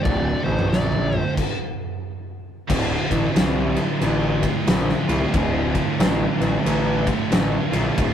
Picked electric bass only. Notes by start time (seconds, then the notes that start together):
0.05 D1
0.46 A1
0.71 A#1
2.70 D1
3.11 A1
3.35 C2
4.01 A1
4.67 A#1
5.09 C2
5.33 D1
5.99 A1
6.40 A1
6.65 A1
7.31 A1
7.72 A#1
7.98 D1